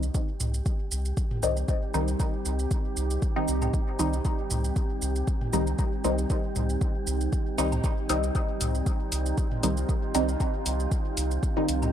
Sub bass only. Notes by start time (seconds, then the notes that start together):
Already playing: C2
0.40 C2
0.91 C2
1.43 C2
1.94 C2
2.45 C2
2.97 C2
3.48 C2
3.99 C2
4.50 C2
5.02 C2
5.53 C2
6.04 C2
6.56 C2
7.07 C2
7.58 C2
8.10 C2
8.61 C2
9.12 C2
9.63 C2
10.15 C2
10.66 C2
11.17 C2
11.68 C2